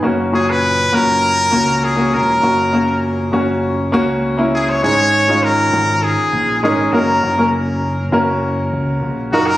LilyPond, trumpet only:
\new Staff \with { instrumentName = "Trumpet" } { \time 4/4 \key fis \mixolydian \tempo 4 = 100 r8 gis'16 b'8. ais'4. gis'8 ais'8~ | ais'4 r2 r8 gis'16 cis''16 | \key ges \lydian des''4 bes'4 aes'4 aes'8 bes'8~ | bes'8 r2. ges'16 bes'16 | }